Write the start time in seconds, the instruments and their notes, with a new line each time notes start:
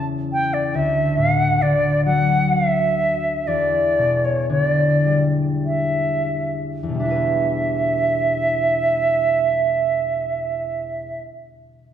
Already playing: harp E2 C#3 E3 A3 C#4
0.32 flute G5
0.53 flute D5
0.74 harp D2, flute E5
1.17 harp A2, flute F#5
1.62 harp D3, flute D5
2.05 harp F#3, flute F#5
2.52 flute F5
2.69 flute E5
3.47 harp E2, flute D5
3.99 harp B2
4.24 flute C#5
4.50 harp D3, flute C#5
4.62 flute D5
5.06 harp G3
5.65 flute E5
6.83 harp E2
6.89 harp B2
6.94 harp G3, flute E5
7.00 harp D4
7.05 harp E4
7.10 harp B4